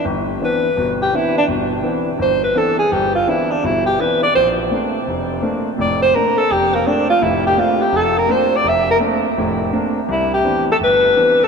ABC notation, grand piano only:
X:1
M:4/4
L:1/8
Q:"Swing" 1/4=167
K:Bblyd
V:1 name="Grand piano"
G,,,2 [E,=B,CD] z [G,,,=B,,]2 [E,B,CD] z | [G,,,=B,,]2 [E,=B,CD] z G,,,2 [E,B,CD] z | G,,,2 [E,=B,CD] z [G,,,=B,,]2 [E,B,CD] z | B,,,2 [A,B,CD] z F,,,2 [A,B,CD] z |
[F,,,A,,]2 [A,B,CD] z F,,,2 [A,B,CD] z | [F,,,A,,]2 [A,B,CD] z F,,,2 [A,B,CD] z | F,,,2 [A,B,CD] z [F,,,A,,]2 [A,B,CD] z | C,,2 [E,=B,CD] z G,,,2 [E,B,CD] z |]